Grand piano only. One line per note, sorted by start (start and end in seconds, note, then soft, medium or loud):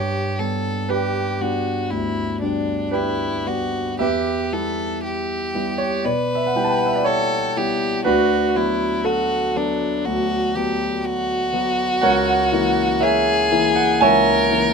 0.00 0.38 G2 soft
0.00 0.90 C#5 medium
0.39 1.37 G3 soft
0.39 1.37 B3 soft
0.39 0.88 D4 soft
0.89 1.40 D4 soft
0.89 2.88 G4 soft
0.89 2.90 B4 medium
1.41 1.87 G3 soft
1.41 1.87 B3 soft
1.41 1.88 D4 soft
1.91 2.40 D2 soft
2.42 3.43 G3 soft
2.42 3.43 B3 soft
2.42 2.91 D4 soft
2.91 3.45 D4 soft
2.91 3.97 G4 medium
2.91 3.99 B4 medium
3.46 3.97 G3 soft
3.46 3.97 B3 soft
3.46 3.97 D4 soft
3.99 4.51 E2 soft
3.99 5.75 G4 medium
3.99 5.75 B4 medium
3.99 5.79 E5 medium
4.52 5.50 G3 soft
4.52 5.50 B3 soft
4.52 5.50 E4 soft
5.54 6.01 G3 soft
5.54 6.01 B3 soft
5.54 6.01 E4 soft
5.78 6.04 C#5 medium
6.04 6.54 B2 soft
6.04 6.35 D5 medium
6.35 6.48 E5 medium
6.46 6.57 F#5 medium
6.55 7.52 G3 soft
6.55 7.52 B3 soft
6.55 7.52 E4 soft
6.55 6.65 G5 medium
6.64 6.72 A5 medium
6.71 6.79 G5 medium
6.79 6.87 F#5 medium
6.86 6.96 E5 medium
6.95 7.06 D5 medium
7.04 8.05 C#5 medium
7.56 8.01 G3 soft
7.56 8.02 B3 soft
7.56 8.02 E4 soft
8.04 8.53 D2 medium
8.04 9.01 D4 medium
8.04 9.01 F#4 medium
8.04 9.04 B4 medium
8.55 9.52 F#3 soft
8.55 9.52 B3 soft
9.04 11.04 A4 medium
9.56 10.02 F#3 soft
9.56 10.02 B3 soft
10.06 10.54 D2 soft
10.56 11.50 F#3 soft
10.56 11.50 B3 soft
11.53 11.99 F#3 soft
11.53 11.99 B3 soft
12.02 12.51 C#2 medium
12.02 12.98 A#4 medium
12.02 12.98 C#5 medium
12.02 13.02 F#5 loud
12.52 13.48 E3 soft
12.52 13.48 A#3 soft
12.52 13.49 E4 soft
13.00 13.73 A#4 medium
13.00 13.73 C#5 medium
13.00 13.76 E5 medium
13.52 13.97 E3 soft
13.52 13.97 A#3 soft
13.52 13.98 E4 soft
13.75 14.01 F#5 medium
14.01 14.49 C#2 medium
14.01 14.73 C#5 medium
14.01 14.73 E5 medium
14.01 14.73 G#5 loud
14.51 14.73 E3 soft
14.51 14.73 A#3 soft
14.51 14.73 E4 soft